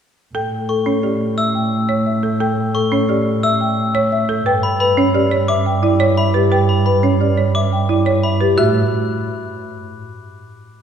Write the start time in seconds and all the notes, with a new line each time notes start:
0.35 A2 A4 G5
0.69 A4 C#6
0.86 C#4 C#5
1.03 G4 D5
1.37 E5 E6
1.55 G5
1.89 C#5
2.06 E5
2.23 A4
2.40 A4 G5
2.75 A4 C#6
2.92 C#4 C#5
3.09 G4 D5
3.43 E5 E6
3.61 G5
3.95 C#5
4.12 E5
4.29 A4
4.46 G2 B4 G5
4.63 B5
4.80 B4 B5
4.97 C#4 C#5
5.14 G4 D5
5.31 C#5
5.48 E5 D6
5.66 G5
5.83 E4 D5
6.00 C#5
6.17 E5 B5
6.34 G4 B4
6.52 B4 G5
6.69 B5
6.86 B4 B5
7.03 C#4 C#5
7.20 G4 D5
7.37 C#5
7.55 E5 D6
7.73 G5
7.89 E4 D5
8.06 C#5
8.23 E5 B5
8.41 G4 B4
8.58 A2 F#4 E5 F#6